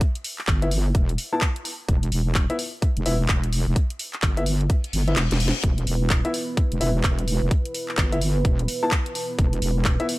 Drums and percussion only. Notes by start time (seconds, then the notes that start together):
0.01 kick, closed hi-hat
0.15 closed hi-hat
0.24 open hi-hat
0.38 clap
0.47 kick, clap, closed hi-hat
0.62 closed hi-hat
0.71 open hi-hat
0.95 kick, closed hi-hat
1.09 closed hi-hat
1.18 open hi-hat
1.41 kick, clap, closed hi-hat
1.56 closed hi-hat
1.65 open hi-hat
1.89 kick, closed hi-hat
2.03 closed hi-hat
2.12 open hi-hat
2.35 kick, clap, closed hi-hat
2.50 closed hi-hat
2.59 open hi-hat
2.82 kick, closed hi-hat
2.97 closed hi-hat
3.06 open hi-hat
3.29 kick, clap, closed hi-hat
3.44 closed hi-hat
3.53 open hi-hat
3.76 kick, closed hi-hat
3.90 closed hi-hat
3.99 open hi-hat
4.13 clap, closed hi-hat
4.22 kick, clap, closed hi-hat
4.37 closed hi-hat
4.46 open hi-hat
4.61 closed hi-hat
4.70 kick, closed hi-hat
4.84 closed hi-hat
4.93 open hi-hat
5.08 closed hi-hat
5.16 snare, clap, closed hi-hat
5.31 snare, closed hi-hat
5.40 open hi-hat
5.48 snare
5.55 closed hi-hat
5.64 kick, closed hi-hat
5.78 closed hi-hat
5.87 open hi-hat
6.10 kick, clap, closed hi-hat
6.25 closed hi-hat
6.34 open hi-hat
6.57 kick, closed hi-hat
6.72 closed hi-hat
6.81 open hi-hat
7.04 kick, clap, closed hi-hat
7.19 closed hi-hat
7.28 open hi-hat
7.51 kick, closed hi-hat
7.65 closed hi-hat
7.74 open hi-hat
7.88 clap
7.97 kick, clap, closed hi-hat
8.12 closed hi-hat
8.21 open hi-hat
8.45 kick, closed hi-hat
8.59 closed hi-hat
8.68 open hi-hat
8.91 kick, clap, closed hi-hat
9.06 closed hi-hat
9.15 open hi-hat
9.39 kick, closed hi-hat
9.53 closed hi-hat
9.62 open hi-hat
9.85 kick, clap, closed hi-hat
10.00 closed hi-hat
10.09 open hi-hat